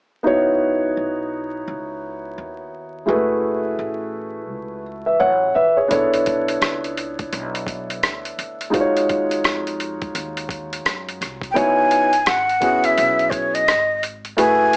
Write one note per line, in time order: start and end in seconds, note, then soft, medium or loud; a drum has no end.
0.23 0.94 C#2 medium
0.23 3.03 B3 medium
0.23 3.04 D#4 medium
0.23 3.04 E4 soft
0.23 3.04 F#4 medium
0.23 3.05 C#5 medium
0.97 1.64 B1 medium
1.68 2.35 C#2 medium
2.38 3.05 D#2 medium
3.06 3.76 F#1 loud
3.06 3.15 G#3 medium
3.06 5.86 E4 medium
3.06 5.86 F#4 medium
3.06 4.82 G#4 medium
3.06 4.82 B4 medium
3.12 5.89 A3 medium
3.79 4.49 A1 medium
4.49 5.16 C#2 medium
5.06 5.19 B4 soft
5.06 5.19 E5 medium
5.20 5.54 A1 medium
5.20 5.54 C#5 medium
5.20 5.54 F#5 medium
5.55 5.89 A#1 medium
5.55 5.76 B4 medium
5.55 5.76 E5 medium
5.77 6.11 G#4 soft
5.77 5.91 C#5 medium
5.88 6.58 B1 medium
5.88 8.68 B3 medium
5.88 8.68 D4 medium
5.88 8.69 E4 medium
5.88 8.69 A4 medium
5.88 kick loud
5.88 closed hi-hat medium
5.92 8.70 C#5 medium
6.14 closed hi-hat soft
6.26 kick medium
6.26 closed hi-hat medium
6.48 closed hi-hat medium
6.61 7.29 C#2 medium
6.61 cross-stick medium
6.61 closed hi-hat medium
6.84 closed hi-hat soft
6.97 closed hi-hat medium
7.19 kick medium
7.19 closed hi-hat soft
7.33 8.00 B1 loud
7.33 closed hi-hat medium
7.55 closed hi-hat soft
7.67 kick medium
7.67 closed hi-hat medium
7.90 closed hi-hat soft
8.03 8.36 D2 medium
8.03 cross-stick loud
8.03 closed hi-hat medium
8.25 closed hi-hat soft
8.38 8.72 D2 medium
8.38 closed hi-hat medium
8.61 closed hi-hat soft
8.70 9.41 D#2 medium
8.70 11.50 G#3 medium
8.70 11.51 D#4 medium
8.70 11.51 F4 medium
8.70 11.52 F#4 medium
8.70 kick medium
8.70 closed hi-hat medium
8.74 8.82 C5 medium
8.81 11.55 C#5 medium
8.97 closed hi-hat soft
9.09 kick medium
9.09 closed hi-hat medium
9.31 closed hi-hat medium
9.44 10.11 F2 medium
9.44 cross-stick loud
9.44 closed hi-hat medium
9.67 closed hi-hat soft
9.80 closed hi-hat medium
10.02 kick medium
10.02 closed hi-hat soft
10.15 10.82 D#2 medium
10.15 closed hi-hat medium
10.37 closed hi-hat soft
10.49 kick medium
10.49 closed hi-hat medium
10.73 closed hi-hat medium
10.85 11.19 F#2 medium
10.85 cross-stick loud
10.85 closed hi-hat medium
11.08 closed hi-hat soft
11.21 11.54 C2 medium
11.21 cross-stick soft
11.21 closed hi-hat medium
11.41 kick medium
11.41 closed hi-hat soft
11.51 12.08 B3 medium
11.51 12.08 D#4 medium
11.51 11.59 G5 medium
11.55 12.23 C#2 medium
11.55 12.08 E4 medium
11.55 12.09 F#4 medium
11.55 12.09 C#5 medium
11.55 12.29 G#5 medium
11.55 kick loud
11.55 closed hi-hat medium
11.91 closed hi-hat medium
12.13 closed hi-hat medium
12.26 12.94 G#1 medium
12.26 12.87 F#5 medium
12.26 cross-stick loud
12.26 closed hi-hat medium
12.49 closed hi-hat soft
12.60 13.62 B3 medium
12.60 13.62 C#4 soft
12.60 13.62 E4 medium
12.60 13.62 F#4 medium
12.60 13.63 G#4 medium
12.60 kick medium
12.60 closed hi-hat medium
12.84 13.32 E5 medium
12.84 closed hi-hat soft
12.98 13.64 B1 loud
12.98 closed hi-hat medium
13.19 closed hi-hat soft
13.30 13.35 C5 medium
13.30 13.56 C#5 medium
13.30 kick medium
13.30 closed hi-hat medium
13.54 14.03 D#5 medium
13.54 closed hi-hat soft
13.68 14.35 G#1 medium
13.68 cross-stick loud
13.68 closed hi-hat medium
14.03 closed hi-hat medium
14.25 closed hi-hat soft
14.37 14.77 F#1 medium
14.37 14.77 A3 medium
14.37 14.77 E4 medium
14.37 14.77 F#4 medium
14.37 14.77 G#4 medium
14.37 14.77 B4 medium
14.37 14.77 G#5 medium
14.37 closed hi-hat medium
14.73 closed hi-hat medium